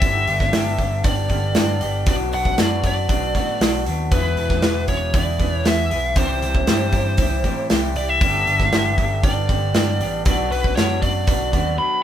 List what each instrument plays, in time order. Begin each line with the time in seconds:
Already playing: lead electric guitar E5
0.02 picked electric bass G1, clean electric guitar G2 D3 G3 B3 D4 G4, kick, open hi-hat
0.27 picked electric bass G1, clean electric guitar G3 B3 D4 G4, open hi-hat
0.40 kick, snare
0.52 picked electric bass G1, clean electric guitar G2 D3 G3 B3 D4 G4, snare, open hi-hat
0.78 picked electric bass G1, clean electric guitar G3 B3 D4 G4, kick, open hi-hat
1.04 picked electric bass G1, clean electric guitar G3 B3 D4 G4, lead electric guitar D5, kick, open hi-hat
1.29 clean electric guitar G2 D3 G3 B3 D4 G4, kick, open hi-hat
1.55 picked electric bass G2, clean electric guitar G3 B3 D4, snare, open hi-hat
1.59 clean electric guitar G4
1.81 picked electric bass G1, clean electric guitar G3 B3 D4 G4, open hi-hat
2.06 picked electric bass B1, clean electric guitar B2 F#3 B3 D4 F#4, lead electric guitar D5, kick, open hi-hat
2.32 picked electric bass B1, clean electric guitar B3 D4 F#4, lead electric guitar F#5, open hi-hat
2.45 kick
2.58 picked electric bass F#2, clean electric guitar B2 F#3 B3 D4 F#4, lead electric guitar D5, snare, open hi-hat
2.83 clean electric guitar B3 D4 F#4, lead electric guitar D5, kick, open hi-hat
3.09 picked electric bass B1, clean electric guitar F#3 B3 D4 F#4, kick, open hi-hat
3.34 picked electric bass A2, clean electric guitar B2 F#3 B3 D4 F#4, kick, open hi-hat
3.60 picked electric bass B1, clean electric guitar F#3 B3 D4 F#4, snare, open hi-hat
3.86 picked electric bass D#2, clean electric guitar B3 D4 F#4, open hi-hat
4.12 picked electric bass E1, clean electric guitar E2 B2 E3 B3 E4 G#4, lead electric guitar B4, kick, open hi-hat
4.37 picked electric bass E1, clean electric guitar E3 B3 E4 G#4, open hi-hat
4.50 kick, snare
4.62 picked electric bass E1, clean electric guitar E2 B2 E3 B3, snare, open hi-hat
4.66 clean electric guitar E4 G#4
4.88 picked electric bass E1, clean electric guitar B3 E4 G#4, lead electric guitar C#5, kick, open hi-hat
4.92 clean electric guitar E3
5.13 picked electric bass E1, clean electric guitar E3 B3 E4 G#4, lead electric guitar D5, kick, open hi-hat
5.40 clean electric guitar E2 B2 E3 B3 E4 G#4, kick, open hi-hat
5.53 lead electric guitar C#5
5.64 picked electric bass E2, clean electric guitar E3 B3 E4 G#4, lead electric guitar E5, snare, open hi-hat
5.91 picked electric bass B1, clean electric guitar E3 B3 E4 G#4, open hi-hat
6.16 picked electric bass C2, clean electric guitar C3 E3 G3 E4 G4, lead electric guitar C5, kick, open hi-hat
6.42 picked electric bass C2, clean electric guitar G3 E4 G4, open hi-hat
6.55 kick
6.67 picked electric bass G2, clean electric guitar C3 E3 G3 E4 G4, snare, open hi-hat
6.93 clean electric guitar G3 E4 G4, kick, open hi-hat
7.17 picked electric bass C2, clean electric guitar E3 G3 E4, kick, open hi-hat
7.22 clean electric guitar G4
7.44 picked electric bass A2, clean electric guitar E3 G3 E4 G4, kick, open hi-hat
7.48 clean electric guitar C3
7.70 picked electric bass C2, clean electric guitar E3 G3 E4 G4, snare, open hi-hat
7.96 picked electric bass C2, clean electric guitar G3 E4 G4, lead electric guitar D5, open hi-hat
8.09 lead electric guitar E5
8.21 picked electric bass G1, clean electric guitar G2 D3 G3 B3 D4 G4, kick, open hi-hat
8.46 picked electric bass G1, clean electric guitar B3 D4 G4, open hi-hat
8.50 clean electric guitar G3
8.60 kick, snare
8.72 picked electric bass G1, clean electric guitar G2 D3 G3 B3 D4 G4, snare, open hi-hat
8.98 picked electric bass G1, clean electric guitar G3 B3 D4 G4, kick, open hi-hat
9.23 picked electric bass G1, clean electric guitar G3 B3 D4 G4, lead electric guitar D5, kick, open hi-hat
9.49 clean electric guitar G2 D3 G3 B3 D4 G4, kick, open hi-hat
9.74 picked electric bass G2, clean electric guitar G3 B3 D4 G4, snare, open hi-hat
10.00 picked electric bass A1, clean electric guitar G3 B3 D4 G4, open hi-hat
10.25 picked electric bass B1, clean electric guitar B2 F#3 B3 D4 F#4, lead electric guitar D5, kick, open hi-hat
10.51 picked electric bass B1, clean electric guitar B3 D4 F#4, lead electric guitar B4, open hi-hat
10.64 kick
10.76 picked electric bass F#2, clean electric guitar B2 F#3 B3 D4 F#4, lead electric guitar C#5, snare, open hi-hat
11.01 clean electric guitar B3 D4 F#4, lead electric guitar D5, kick, open hi-hat
11.27 picked electric bass B1, clean electric guitar F#3 B3 D4 F#4, kick, open hi-hat
11.52 picked electric bass D#2, clean electric guitar B2 F#3 B3 D4 F#4, kick, open hi-hat
11.77 clean electric guitar F#3 B3 D4 F#4, lead electric guitar B5